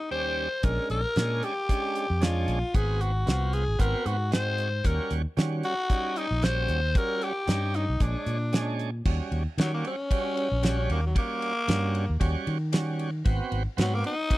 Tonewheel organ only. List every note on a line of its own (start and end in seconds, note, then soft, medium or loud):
0.10 0.48 D#2 medium
0.10 0.48 G3 medium
0.10 0.49 C#4 medium
0.10 0.49 G4 medium
0.63 1.01 G#3 medium
0.63 1.01 C#4 medium
0.63 1.01 D4 medium
1.16 1.54 G#3 medium
1.16 1.54 C#4 medium
1.16 1.54 D4 medium
1.69 2.07 G#3 medium
1.69 2.07 C#4 medium
1.69 2.07 D4 medium
2.21 2.59 G#3 medium
2.21 2.59 C#4 medium
2.21 2.59 D4 medium
2.74 3.12 B3 medium
2.74 3.12 C4 medium
2.74 3.12 F#4 medium
3.26 3.64 B3 medium
3.26 3.64 C4 medium
3.26 3.64 F4 medium
3.79 4.17 B3 medium
3.79 4.17 C4 medium
3.79 4.17 F#4 medium
4.31 4.69 G#3 medium
4.31 4.69 C4 medium
4.31 4.70 F#4 medium
4.84 5.22 G3 medium
4.84 5.22 C#4 medium
4.84 5.22 F#4 medium
5.37 5.75 G3 medium
5.37 5.75 C#4 medium
5.37 5.75 F#4 medium
5.90 6.27 G3 medium
5.90 6.28 C#4 medium
5.90 6.28 D#4 medium
6.43 6.80 G3 medium
6.43 6.80 C#4 medium
6.43 6.81 F#4 medium
6.95 7.33 G3 medium
6.95 7.33 C#4 medium
6.95 7.33 F#4 medium
7.47 7.85 G3 medium
7.47 7.85 C#4 medium
7.47 7.85 D#4 medium
8.00 8.38 G#3 medium
8.00 8.38 D4 medium
8.00 8.38 C#5 medium
8.53 8.90 G#3 medium
8.53 8.90 C#4 medium
8.53 8.91 D4 medium
9.06 9.43 G3 medium
9.06 9.43 C#4 medium
9.06 9.43 F#4 medium
9.58 9.96 G3 medium
9.58 9.96 C#4 medium
9.58 9.96 F#4 medium
10.11 10.48 G3 medium
10.11 10.49 C#4 medium
10.11 10.49 F#4 medium
10.63 11.00 G3 medium
10.63 11.01 C#4 medium
10.63 11.01 F#4 loud
11.15 11.53 G3 medium
11.15 11.53 C#4 medium
11.15 11.53 F#4 medium
11.68 12.05 G3 medium
11.68 12.06 C#4 medium
11.68 12.06 F#4 medium
12.20 12.58 G3 medium
12.20 12.58 C#4 medium
12.20 12.58 F#4 medium
12.72 13.10 G3 medium
12.72 13.10 C#4 medium
12.72 13.11 F#4 loud
13.25 13.63 B3 medium
13.25 13.63 C4 medium
13.25 13.63 F#4 medium
13.77 14.15 B3 medium
13.77 14.15 C4 medium
13.77 14.16 F#4 medium
14.30 14.38 B3 medium
14.30 14.38 C4 medium
14.30 14.38 F#4 medium